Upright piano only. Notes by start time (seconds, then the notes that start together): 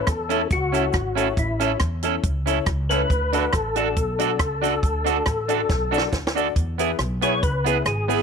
0.29 C#4 E4 A4 C#5
0.73 C#4 E4 A4 C#5
1.16 C#4 E4 A4 C#5
1.60 C#4 E4 A4 C#5
2.03 C#4 E4 A4 C#5
2.46 C#4 E4 A4 C#5
2.90 C#4 E4 A4 C#5
3.33 D4 F#4 A4 D5
3.76 D4 F#4 A4 D5
4.19 D4 F#4 A4 D5
4.62 D4 F#4 A4 D5
5.05 D4 F#4 A4 D5
5.49 D4 F#4 A4 D5
5.92 D4 F#4 A4 D5
6.36 D4 F#4 A4 D5
6.79 B3 E4 G#4 B4
6.99 G#4 B4
7.22 B3 E4 G#4 B4
7.66 B3 E4 G#4 B4
8.08 B3 E4 G#4 B4